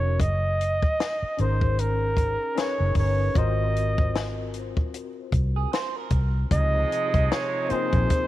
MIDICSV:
0, 0, Header, 1, 9, 480
1, 0, Start_track
1, 0, Tempo, 789474
1, 118, Time_signature, 4, 2, 24, 8
1, 5030, End_track
2, 0, Start_track
2, 0, Title_t, "Flugelhorn"
2, 0, Program_c, 0, 56
2, 0, Note_on_c, 0, 73, 88
2, 128, Note_on_c, 0, 75, 102
2, 137, Note_off_c, 0, 73, 0
2, 855, Note_on_c, 0, 72, 78
2, 865, Note_off_c, 0, 75, 0
2, 1095, Note_on_c, 0, 70, 97
2, 1104, Note_off_c, 0, 72, 0
2, 1575, Note_on_c, 0, 73, 91
2, 1584, Note_off_c, 0, 70, 0
2, 1806, Note_off_c, 0, 73, 0
2, 1811, Note_on_c, 0, 73, 86
2, 2053, Note_on_c, 0, 75, 98
2, 2062, Note_off_c, 0, 73, 0
2, 2765, Note_off_c, 0, 75, 0
2, 3966, Note_on_c, 0, 75, 111
2, 4448, Note_on_c, 0, 73, 104
2, 4457, Note_off_c, 0, 75, 0
2, 4688, Note_on_c, 0, 72, 102
2, 4697, Note_off_c, 0, 73, 0
2, 5030, Note_off_c, 0, 72, 0
2, 5030, End_track
3, 0, Start_track
3, 0, Title_t, "Clean electric guitar"
3, 0, Program_c, 1, 27
3, 3382, Note_on_c, 1, 68, 70
3, 3476, Note_off_c, 1, 68, 0
3, 3485, Note_on_c, 1, 72, 88
3, 3623, Note_off_c, 1, 72, 0
3, 3623, Note_on_c, 1, 70, 75
3, 3945, Note_off_c, 1, 70, 0
3, 5030, End_track
4, 0, Start_track
4, 0, Title_t, "Tine electric piano"
4, 0, Program_c, 2, 4
4, 0, Control_c, 2, 64, 127
4, 0, Note_on_c, 2, 61, 73
4, 0, Note_on_c, 2, 63, 68
4, 0, Note_on_c, 2, 66, 69
4, 0, Note_on_c, 2, 70, 70
4, 126, Note_off_c, 2, 61, 0
4, 126, Control_c, 2, 64, 0
4, 127, Note_off_c, 2, 66, 0
4, 130, Note_off_c, 2, 63, 0
4, 131, Note_off_c, 2, 70, 0
4, 239, Control_c, 2, 64, 127
4, 834, Note_on_c, 2, 61, 57
4, 840, Note_on_c, 2, 63, 55
4, 848, Note_on_c, 2, 68, 55
4, 854, Note_on_c, 2, 70, 54
4, 859, Note_on_c, 2, 72, 65
4, 1015, Note_off_c, 2, 61, 0
4, 1018, Note_off_c, 2, 63, 0
4, 1022, Note_off_c, 2, 68, 0
4, 1025, Note_off_c, 2, 70, 0
4, 1028, Note_off_c, 2, 72, 0
4, 1551, Note_on_c, 2, 61, 67
4, 1558, Note_on_c, 2, 63, 58
4, 1564, Note_on_c, 2, 68, 63
4, 1572, Note_on_c, 2, 70, 59
4, 1577, Note_on_c, 2, 71, 66
4, 1613, Note_off_c, 2, 71, 0
4, 1617, Note_on_c, 2, 73, 74
4, 2030, Note_on_c, 2, 60, 61
4, 2035, Note_off_c, 2, 61, 0
4, 2037, Note_on_c, 2, 65, 56
4, 2038, Note_off_c, 2, 63, 0
4, 2041, Note_off_c, 2, 68, 0
4, 2041, Note_off_c, 2, 70, 0
4, 2041, Note_on_c, 2, 66, 53
4, 2045, Control_c, 2, 64, 0
4, 2049, Note_on_c, 2, 70, 54
4, 2057, Note_on_c, 2, 72, 74
4, 2067, Note_off_c, 2, 73, 0
4, 2144, Control_c, 2, 64, 127
4, 2330, Note_off_c, 2, 60, 0
4, 2333, Note_off_c, 2, 65, 0
4, 2335, Note_off_c, 2, 66, 0
4, 2339, Note_off_c, 2, 70, 0
4, 2343, Note_off_c, 2, 72, 0
4, 3967, Control_c, 2, 64, 0
4, 4065, Control_c, 2, 64, 127
4, 4671, Note_on_c, 2, 58, 70
4, 4678, Note_on_c, 2, 60, 65
4, 4684, Note_on_c, 2, 63, 71
4, 4691, Note_on_c, 2, 65, 68
4, 4698, Note_on_c, 2, 68, 89
4, 4854, Note_off_c, 2, 58, 0
4, 4857, Note_off_c, 2, 60, 0
4, 4860, Note_off_c, 2, 63, 0
4, 4863, Note_off_c, 2, 65, 0
4, 4867, Note_off_c, 2, 68, 0
4, 5030, End_track
5, 0, Start_track
5, 0, Title_t, "Horn section"
5, 0, Program_c, 3, 61
5, 3959, Note_on_c, 3, 53, 72
5, 3960, Note_on_c, 3, 48, 76
5, 3960, Note_on_c, 3, 56, 73
5, 5030, Note_off_c, 3, 48, 0
5, 5030, Note_off_c, 3, 53, 0
5, 5030, Note_off_c, 3, 56, 0
5, 5030, End_track
6, 0, Start_track
6, 0, Title_t, "Tonewheel organ"
6, 0, Program_c, 4, 16
6, 3959, Note_on_c, 4, 48, 65
6, 3959, Note_on_c, 4, 63, 78
6, 3960, Note_on_c, 4, 53, 69
6, 5030, Note_off_c, 4, 48, 0
6, 5030, Note_off_c, 4, 53, 0
6, 5030, Note_off_c, 4, 63, 0
6, 5030, End_track
7, 0, Start_track
7, 0, Title_t, "Fingered electric bass"
7, 0, Program_c, 5, 33
7, 0, Note_on_c, 5, 29, 97
7, 124, Note_off_c, 5, 29, 0
7, 124, Note_on_c, 5, 30, 86
7, 508, Note_off_c, 5, 30, 0
7, 847, Note_on_c, 5, 32, 90
7, 1437, Note_off_c, 5, 32, 0
7, 1704, Note_on_c, 5, 30, 86
7, 1783, Note_off_c, 5, 30, 0
7, 1798, Note_on_c, 5, 31, 71
7, 1992, Note_off_c, 5, 31, 0
7, 2042, Note_on_c, 5, 32, 86
7, 2874, Note_off_c, 5, 32, 0
7, 3241, Note_on_c, 5, 36, 77
7, 3433, Note_off_c, 5, 36, 0
7, 3718, Note_on_c, 5, 36, 86
7, 3912, Note_off_c, 5, 36, 0
7, 3961, Note_on_c, 5, 37, 100
7, 4153, Note_off_c, 5, 37, 0
7, 4344, Note_on_c, 5, 36, 82
7, 4423, Note_off_c, 5, 36, 0
7, 4824, Note_on_c, 5, 34, 97
7, 4903, Note_off_c, 5, 34, 0
7, 5030, End_track
8, 0, Start_track
8, 0, Title_t, "Muted fingered electric bass strokes"
8, 744, Note_on_c, 9, 29, 49
8, 805, Note_off_c, 9, 29, 0
8, 4687, Note_on_c, 9, 29, 46
8, 4747, Note_off_c, 9, 29, 0
8, 5030, End_track
9, 0, Start_track
9, 0, Title_t, "Drums"
9, 119, Note_on_c, 9, 36, 98
9, 126, Note_on_c, 9, 42, 86
9, 180, Note_off_c, 9, 36, 0
9, 186, Note_off_c, 9, 42, 0
9, 369, Note_on_c, 9, 42, 71
9, 430, Note_off_c, 9, 42, 0
9, 502, Note_on_c, 9, 36, 88
9, 563, Note_off_c, 9, 36, 0
9, 608, Note_on_c, 9, 42, 57
9, 610, Note_on_c, 9, 38, 90
9, 669, Note_off_c, 9, 42, 0
9, 671, Note_off_c, 9, 38, 0
9, 841, Note_on_c, 9, 42, 58
9, 902, Note_off_c, 9, 42, 0
9, 981, Note_on_c, 9, 36, 73
9, 1042, Note_off_c, 9, 36, 0
9, 1086, Note_on_c, 9, 42, 92
9, 1147, Note_off_c, 9, 42, 0
9, 1317, Note_on_c, 9, 36, 72
9, 1324, Note_on_c, 9, 42, 65
9, 1378, Note_off_c, 9, 36, 0
9, 1385, Note_off_c, 9, 42, 0
9, 1564, Note_on_c, 9, 42, 71
9, 1569, Note_on_c, 9, 38, 86
9, 1625, Note_off_c, 9, 42, 0
9, 1630, Note_off_c, 9, 38, 0
9, 1791, Note_on_c, 9, 46, 47
9, 1794, Note_on_c, 9, 36, 77
9, 1852, Note_off_c, 9, 46, 0
9, 1855, Note_off_c, 9, 36, 0
9, 2039, Note_on_c, 9, 36, 106
9, 2043, Note_on_c, 9, 42, 77
9, 2100, Note_off_c, 9, 36, 0
9, 2104, Note_off_c, 9, 42, 0
9, 2289, Note_on_c, 9, 42, 63
9, 2349, Note_off_c, 9, 42, 0
9, 2421, Note_on_c, 9, 36, 90
9, 2481, Note_off_c, 9, 36, 0
9, 2525, Note_on_c, 9, 42, 52
9, 2527, Note_on_c, 9, 38, 96
9, 2586, Note_off_c, 9, 42, 0
9, 2588, Note_off_c, 9, 38, 0
9, 2758, Note_on_c, 9, 42, 60
9, 2819, Note_off_c, 9, 42, 0
9, 2899, Note_on_c, 9, 36, 81
9, 2960, Note_off_c, 9, 36, 0
9, 3003, Note_on_c, 9, 42, 91
9, 3064, Note_off_c, 9, 42, 0
9, 3237, Note_on_c, 9, 36, 87
9, 3243, Note_on_c, 9, 42, 61
9, 3297, Note_off_c, 9, 36, 0
9, 3304, Note_off_c, 9, 42, 0
9, 3484, Note_on_c, 9, 42, 72
9, 3488, Note_on_c, 9, 38, 84
9, 3545, Note_off_c, 9, 42, 0
9, 3549, Note_off_c, 9, 38, 0
9, 3711, Note_on_c, 9, 42, 67
9, 3714, Note_on_c, 9, 36, 85
9, 3772, Note_off_c, 9, 42, 0
9, 3775, Note_off_c, 9, 36, 0
9, 3958, Note_on_c, 9, 36, 115
9, 3962, Note_on_c, 9, 42, 94
9, 4019, Note_off_c, 9, 36, 0
9, 4023, Note_off_c, 9, 42, 0
9, 4207, Note_on_c, 9, 42, 76
9, 4268, Note_off_c, 9, 42, 0
9, 4341, Note_on_c, 9, 36, 94
9, 4346, Note_on_c, 9, 42, 33
9, 4401, Note_off_c, 9, 36, 0
9, 4407, Note_off_c, 9, 42, 0
9, 4447, Note_on_c, 9, 42, 64
9, 4449, Note_on_c, 9, 38, 112
9, 4508, Note_off_c, 9, 42, 0
9, 4510, Note_off_c, 9, 38, 0
9, 4681, Note_on_c, 9, 42, 62
9, 4741, Note_off_c, 9, 42, 0
9, 4820, Note_on_c, 9, 36, 87
9, 4824, Note_on_c, 9, 42, 30
9, 4881, Note_off_c, 9, 36, 0
9, 4884, Note_off_c, 9, 42, 0
9, 4924, Note_on_c, 9, 42, 100
9, 4928, Note_on_c, 9, 36, 90
9, 4985, Note_off_c, 9, 42, 0
9, 4988, Note_off_c, 9, 36, 0
9, 5030, End_track
0, 0, End_of_file